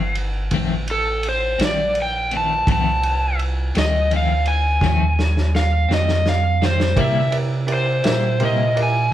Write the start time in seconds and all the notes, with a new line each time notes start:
Already playing: G1 F5
0.15 ride
0.51 A1 F2 D#3 A3 C4, kick, ride
0.88 A4, ride
1.23 ride
1.29 C5
1.59 A#1 D#3 A3 C4, snare, ride
1.64 D5
1.95 ride
2.02 G5
2.31 A3 C4, ride
2.36 D#3 A5
2.67 C2 F2 D#3 A3 C4, kick, ride
2.72 A5
3.03 ride
3.39 ride
3.75 D2 D#3 A3 C4 D#5, snare, ride
4.11 F2 D#3 A3 C4, ride
4.16 F5
4.46 G#5, ride
4.81 D#2 F2 D#3 A3 C4, kick, snare
5.19 snare
5.37 snare
5.55 F5, snare
5.89 F2 A3 C4, snare
5.93 D#3 D#5
6.08 snare
6.26 F5, snare
6.62 D#3 A3 C4 C5, snare
6.80 snare
6.96 C3 G3 A#3 E4 G4 A#4 D5, kick, ride
7.01 E5
7.31 E4 G4 A#4 D5, ride
7.66 E4 G4 A#4 D5, ride
7.74 C5
8.02 A#2 E4 G4 A#4 E5, snare, ride
8.07 G3 A#3
8.39 C3 G3 A#3 E4 G4 A#4 C5, ride
8.43 E4 D#5
8.75 E4 G4 A#4 D5, ride
8.83 G#5